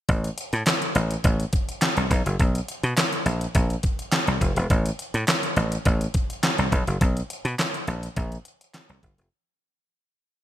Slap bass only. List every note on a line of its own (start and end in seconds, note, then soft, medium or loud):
0.09 0.28 A1 loud
0.53 0.62 A2 loud
0.95 1.15 A1 medium
1.24 1.44 A1 medium
1.97 2.06 C2 medium
2.11 2.21 B1 medium
2.26 2.35 F#1 medium
2.40 2.59 B1 medium
2.83 2.93 B2 medium
3.26 3.46 A#1 medium
3.55 3.75 A#1 medium
4.28 4.37 C2 medium
4.41 4.52 F1 medium
4.56 4.66 E1 loud
4.70 4.90 A1 loud
5.14 5.24 A2 medium
5.57 5.76 A1 medium
5.86 6.06 A1 medium
6.59 6.68 C2 medium
6.72 6.83 B1 medium
6.87 6.97 F#1 medium
7.01 7.21 B1 loud
7.45 7.54 B2 loud
7.88 8.07 A#1 medium
8.17 8.36 A#1 medium
8.89 8.99 C2 medium
9.03 9.14 G1 medium
9.18 9.27 F1 medium